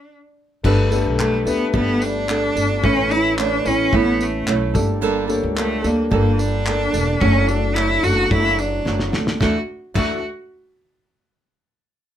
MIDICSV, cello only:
0, 0, Header, 1, 2, 480
1, 0, Start_track
1, 0, Key_signature, 2, "major"
1, 0, Tempo, 547445
1, 565, Time_signature, 4, 2, 24, 8
1, 10670, End_track
2, 0, Start_track
2, 0, Title_t, "Cello"
2, 0, Program_c, 0, 42
2, 0, Note_on_c, 0, 62, 117
2, 92, Note_off_c, 0, 62, 0
2, 1062, Note_on_c, 0, 57, 92
2, 1278, Note_off_c, 0, 57, 0
2, 1305, Note_on_c, 0, 59, 90
2, 1519, Note_off_c, 0, 59, 0
2, 1540, Note_on_c, 0, 59, 105
2, 1776, Note_on_c, 0, 62, 113
2, 1789, Note_off_c, 0, 59, 0
2, 2494, Note_on_c, 0, 61, 108
2, 2507, Note_off_c, 0, 62, 0
2, 2734, Note_on_c, 0, 64, 109
2, 2747, Note_off_c, 0, 61, 0
2, 2967, Note_off_c, 0, 64, 0
2, 2972, Note_on_c, 0, 62, 112
2, 3222, Note_on_c, 0, 61, 109
2, 3235, Note_off_c, 0, 62, 0
2, 3463, Note_on_c, 0, 59, 115
2, 3476, Note_off_c, 0, 61, 0
2, 3700, Note_on_c, 0, 57, 93
2, 3714, Note_off_c, 0, 59, 0
2, 4173, Note_off_c, 0, 57, 0
2, 4904, Note_on_c, 0, 57, 96
2, 5134, Note_on_c, 0, 58, 91
2, 5147, Note_off_c, 0, 57, 0
2, 5361, Note_off_c, 0, 58, 0
2, 5366, Note_on_c, 0, 58, 97
2, 5603, Note_on_c, 0, 62, 115
2, 5617, Note_off_c, 0, 58, 0
2, 6315, Note_on_c, 0, 61, 113
2, 6328, Note_off_c, 0, 62, 0
2, 6549, Note_on_c, 0, 62, 107
2, 6562, Note_off_c, 0, 61, 0
2, 6796, Note_on_c, 0, 64, 109
2, 6809, Note_off_c, 0, 62, 0
2, 7045, Note_on_c, 0, 66, 116
2, 7058, Note_off_c, 0, 64, 0
2, 7282, Note_on_c, 0, 64, 116
2, 7296, Note_off_c, 0, 66, 0
2, 7527, Note_on_c, 0, 62, 100
2, 7540, Note_off_c, 0, 64, 0
2, 8006, Note_off_c, 0, 62, 0
2, 8256, Note_on_c, 0, 66, 90
2, 8385, Note_off_c, 0, 66, 0
2, 8734, Note_on_c, 0, 66, 94
2, 8953, Note_off_c, 0, 66, 0
2, 10670, End_track
0, 0, End_of_file